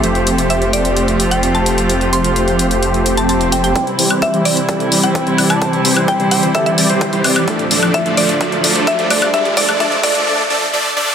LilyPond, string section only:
\new Staff \with { instrumentName = "String section" } { \clef bass \time 4/4 \key c \major \tempo 4 = 129 <a f' g'>1~ | <a f' g'>1 | <c g e'>1~ | <c g e'>1 |
<d, a, f>1~ | <d, a, f>2 r2 | }